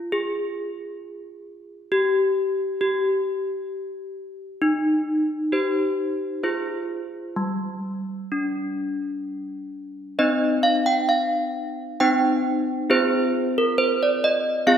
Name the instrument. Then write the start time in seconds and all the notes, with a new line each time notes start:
handbells
Already playing: F4
0.12 G#4
1.92 G4
2.81 G4
4.62 D#4
5.52 G4 C5
6.43 F4 G#4 C5
7.36 G3
8.32 D4
10.19 C4 D#4 C5 D#5
10.63 F5
10.86 G5
11.09 F5
12.00 C4 D#4 C5 G5
12.90 C4 F4 G#4 C5
13.58 A#4
13.78 C5
14.03 D5
14.24 D#5
14.67 C4 F4 G#4 F5